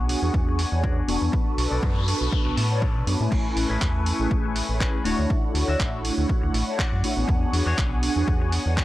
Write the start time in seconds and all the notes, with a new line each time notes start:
Already playing: B1 B3 D4 F#4 G#4 C#5 F#5 G#5
0.09 open hi-hat
0.22 E2 B3 D4 F#4 G#4 C#6
0.33 E2, muted clean electric guitar stroke, kick
0.47 muted clean electric guitar stroke
0.58 muted clean electric guitar stroke, open hi-hat
0.72 E2 B3 D4 F#4 G#4 C#5
0.83 B3 D4 F#4 G#4 C#5 D5, kick
1.08 E1 B3 D4 F#4 A4 C#6, open hi-hat
1.22 E2
1.32 B4 A5, muted clean electric guitar stroke, kick, noise sweep
1.46 muted clean electric guitar stroke
1.58 B1, open hi-hat
1.70 B1 D4 A4 D5
1.83 F#2, kick
2.08 open hi-hat
2.21 B1 B3 D4 F#4 A4 C#6
2.31 muted clean electric guitar stroke, kick
2.45 B1, muted clean electric guitar stroke
2.56 A2 A5, muted clean electric guitar stroke, open hi-hat
2.70 B3 D4 F#4 A4 C#5
2.81 D4 A4 C#5 D5, kick
2.95 B2
3.07 F#2 B3 D4 F#4 A4 C#5, open hi-hat
3.20 A2 A3 C#4 E4 B4 G#5
3.31 A1 A3 G#5 C#6, muted clean electric guitar stroke, kick, crash
3.44 muted clean electric guitar stroke
3.56 A1, open hi-hat
3.69 A1 C#4 G#4 B4
3.81 E2, kick, clap
4.06 open hi-hat
4.19 A1 A3 C#4 E4 G#4 B4
4.31 kick
4.44 muted clean electric guitar stroke
4.55 muted clean electric guitar stroke, open hi-hat
4.69 A1 A3 C#4 E4 G#4 B4
4.80 A3 C#4 E4 G#4 B4, kick, clap
5.04 D1 A3 D4 E4 F#4 C#5 F#5, open hi-hat
5.19 D2
5.30 kick
5.43 muted clean electric guitar stroke
5.55 D2, open hi-hat
5.68 D2 D4 F#4 E5
5.80 A1, kick, clap
6.05 open hi-hat
6.17 D2 A3 D4 E4 F#4 C#5
6.28 muted clean electric guitar stroke, kick
6.42 D2, muted clean electric guitar stroke
6.53 A1, muted clean electric guitar stroke, open hi-hat
6.67 A3 D4 E4 F#4 C#5
6.78 D4 F#4 D5, kick, clap
6.92 F#2
7.03 A1 A3 D4 E4 F#4 C#5, open hi-hat
7.16 A1 B3 D4 F#4 G#4 C#5
7.28 E2 G#5, muted clean electric guitar stroke, kick
7.41 muted clean electric guitar stroke
7.53 E2, open hi-hat
7.66 E2 D4 F#4 G#4 C#5
7.78 B1, kick, clap
8.03 open hi-hat
8.16 E2 B3 D4 F#4 G#4 C#5
8.27 E2, muted clean electric guitar stroke, kick
8.40 muted clean electric guitar stroke
8.51 muted clean electric guitar stroke, open hi-hat
8.66 E2 B3 D4 F#4 G#4 C#5
8.76 B3 D4 F#4 G#4 C#5, kick, clap